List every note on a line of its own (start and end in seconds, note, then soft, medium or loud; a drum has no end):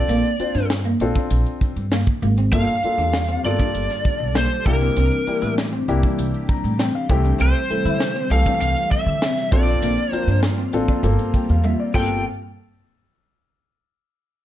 0.00 0.27 C4 medium
0.00 0.27 D4 medium
0.00 0.28 F4 medium
0.00 0.28 A4 medium
0.00 0.66 D5 medium
0.08 0.21 A#1 medium
0.08 0.34 A#3 medium
0.08 closed hi-hat medium
0.25 closed hi-hat soft
0.39 0.81 C4 medium
0.39 0.81 D4 medium
0.39 0.81 F4 soft
0.39 0.81 C5 medium
0.39 muted upright bass stroke soft
0.39 closed hi-hat medium
0.55 0.92 G2 medium
0.55 0.80 D4 medium
0.55 closed hi-hat soft
0.70 snare medium
0.70 closed hi-hat medium
0.85 1.10 A#3 medium
1.00 1.12 A#1 medium
1.00 1.84 C4 medium
1.00 1.84 D4 medium
1.00 1.84 F4 medium
1.00 1.84 A4 medium
1.00 closed hi-hat soft
1.15 1.41 D4 medium
1.15 kick medium
1.15 closed hi-hat soft
1.30 1.43 A#1 medium
1.30 closed hi-hat medium
1.46 closed hi-hat soft
1.61 muted upright bass stroke soft
1.61 kick medium
1.61 closed hi-hat soft
1.76 2.01 G2 medium
1.76 closed hi-hat soft
1.92 2.17 A#3 medium
1.92 snare medium
1.92 closed hi-hat medium
2.07 kick medium
2.22 2.53 G#1 medium
2.22 2.35 A#3 medium
2.22 closed hi-hat soft
2.38 2.50 C4 medium
2.38 closed hi-hat soft
2.52 2.65 G1 medium
2.52 4.64 D3 medium
2.52 4.63 G3 medium
2.52 2.77 A#3 medium
2.52 2.74 A#3 medium
2.52 7.05 D4 medium
2.52 2.74 D4 medium
2.52 2.74 F4 medium
2.52 4.64 A4 medium
2.52 2.74 A4 medium
2.52 3.40 F5 medium
2.52 kick loud
2.52 closed hi-hat medium
2.83 3.25 A#3 medium
2.83 3.25 D4 medium
2.83 3.25 F4 medium
2.83 3.26 A4 medium
2.83 muted upright bass stroke soft
2.83 closed hi-hat soft
2.98 3.35 E2 medium
2.98 3.23 D4 medium
2.98 closed hi-hat soft
3.13 snare loud
3.13 closed hi-hat medium
3.28 3.54 C4 medium
3.28 closed hi-hat soft
3.43 3.56 G1 medium
3.43 4.27 A#3 medium
3.43 4.27 D4 medium
3.43 4.28 F4 medium
3.43 4.28 A4 medium
3.43 4.39 D5 medium
3.43 closed hi-hat soft
3.60 3.85 D4 medium
3.60 kick medium
3.60 closed hi-hat soft
3.74 3.86 G1 medium
3.74 closed hi-hat medium
3.90 snare soft
3.90 closed hi-hat soft
4.05 muted upright bass stroke soft
4.05 kick medium
4.05 closed hi-hat medium
4.20 4.45 B1 medium
4.35 4.60 A#3 medium
4.35 4.66 C5 medium
4.35 snare medium
4.35 closed hi-hat medium
4.50 closed hi-hat soft
4.66 4.90 C2 medium
4.66 7.07 C3 medium
4.66 7.07 E3 medium
4.66 9.48 G3 medium
4.66 5.15 A#3 medium
4.66 4.78 A#3 medium
4.66 5.15 D4 medium
4.66 5.15 E4 medium
4.66 9.48 G4 medium
4.66 5.15 G4 medium
4.66 5.53 A#4 medium
4.66 kick medium
4.66 closed hi-hat medium
4.81 4.94 C4 medium
4.81 closed hi-hat soft
4.96 5.09 C2 medium
4.96 5.22 C4 medium
4.96 closed hi-hat medium
5.12 closed hi-hat soft
5.27 5.68 A#3 medium
5.27 5.68 D4 medium
5.27 5.69 E4 medium
5.27 5.69 G4 medium
5.27 muted upright bass stroke soft
5.27 closed hi-hat medium
5.42 5.79 A2 medium
5.42 5.67 E4 medium
5.42 closed hi-hat soft
5.58 snare medium
5.58 closed hi-hat medium
5.73 5.97 C4 medium
5.88 6.00 C2 medium
5.88 6.71 A#3 medium
5.88 6.70 D4 medium
5.88 6.71 E4 medium
5.88 6.71 G4 medium
5.88 closed hi-hat soft
6.03 6.28 D4 medium
6.03 kick medium
6.03 closed hi-hat soft
6.18 6.30 C2 medium
6.18 closed hi-hat medium
6.34 closed hi-hat soft
6.49 6.77 A#5 medium
6.49 kick medium
6.49 closed hi-hat soft
6.64 6.88 A2 medium
6.64 closed hi-hat soft
6.79 7.04 C4 medium
6.79 6.94 G5 medium
6.79 snare medium
6.79 closed hi-hat medium
6.95 7.09 F5 medium
7.09 7.34 C2 loud
7.09 9.49 C3 medium
7.09 9.49 E3 medium
7.09 7.58 A3 medium
7.09 11.91 C4 medium
7.09 7.22 C4 medium
7.09 7.58 C4 medium
7.09 7.58 E4 medium
7.09 7.59 G4 loud
7.09 7.38 E5 medium
7.09 kick medium
7.09 closed hi-hat medium
7.25 7.37 D4 medium
7.25 closed hi-hat soft
7.39 7.52 C2 medium
7.39 7.64 C4 medium
7.39 8.34 C5 medium
7.39 closed hi-hat medium
7.70 8.11 A3 medium
7.70 8.11 C4 soft
7.70 8.12 E4 medium
7.70 8.12 A4 medium
7.70 muted upright bass stroke soft
7.70 closed hi-hat medium
7.85 8.22 D3 medium
7.85 8.10 E4 medium
7.85 closed hi-hat soft
8.00 snare medium
8.00 closed hi-hat medium
8.16 8.41 C4 medium
8.16 closed hi-hat soft
8.30 8.43 C2 medium
8.30 9.14 E3 medium
8.30 9.13 A3 medium
8.30 9.13 C4 medium
8.30 9.14 A4 medium
8.30 8.60 F5 medium
8.30 closed hi-hat medium
8.46 8.71 D4 medium
8.46 kick medium
8.46 closed hi-hat soft
8.60 8.73 C2 medium
8.60 8.89 F5 medium
8.60 closed hi-hat medium
8.76 closed hi-hat soft
8.91 9.53 E5 loud
8.91 muted upright bass stroke soft
8.91 kick medium
8.91 closed hi-hat medium
9.06 9.31 D3 medium
9.22 9.47 C4 medium
9.22 snare medium
9.22 closed hi-hat medium
9.37 snare soft
9.37 closed hi-hat soft
9.52 9.77 A#1 medium
9.52 11.02 F3 medium
9.52 11.92 A#3 medium
9.52 10.01 C4 medium
9.52 9.65 C4 medium
9.52 10.01 D4 medium
9.52 11.92 F4 medium
9.52 10.01 F4 medium
9.52 10.01 A4 medium
9.52 10.15 D5 medium
9.52 kick medium
9.52 closed hi-hat medium
9.67 9.80 D4 medium
9.67 closed hi-hat soft
9.82 9.94 A#1 medium
9.82 10.08 A#3 medium
9.82 closed hi-hat medium
9.98 closed hi-hat soft
10.12 10.54 C4 medium
10.12 10.54 D4 soft
10.12 10.54 F4 medium
10.12 10.54 A#4 medium
10.12 10.39 C5 medium
10.12 muted upright bass stroke soft
10.12 closed hi-hat medium
10.27 10.64 G2 medium
10.27 10.53 D4 medium
10.27 closed hi-hat soft
10.43 snare medium
10.43 closed hi-hat medium
10.58 10.83 C4 medium
10.73 10.86 A1 medium
10.73 11.02 C4 medium
10.73 11.04 D4 medium
10.73 11.02 F4 medium
10.73 11.02 A4 medium
10.73 closed hi-hat medium
10.88 11.13 D4 medium
10.88 kick medium
10.88 closed hi-hat soft
11.03 11.16 G1 medium
11.03 11.93 C3 medium
11.03 11.93 G3 medium
11.03 11.92 A#3 medium
11.03 11.93 C4 medium
11.03 11.93 F4 medium
11.03 11.93 A4 medium
11.03 closed hi-hat medium
11.19 closed hi-hat soft
11.34 11.48 G5 medium
11.34 kick medium
11.34 closed hi-hat soft
11.49 11.74 E2 medium
11.49 11.64 F5 medium
11.49 closed hi-hat soft
11.64 11.89 A#3 medium
11.64 11.79 E5 medium
11.64 high tom medium
11.80 11.94 D5 medium
11.94 12.23 G1 medium
11.94 12.23 A#2 medium
11.94 12.13 G3 medium
11.94 12.23 G3 medium
11.94 12.22 A#3 medium
11.94 12.23 C4 medium
11.94 12.23 F4 medium
11.94 12.22 A4 medium
11.94 12.23 G5 medium
11.94 kick medium
11.94 crash medium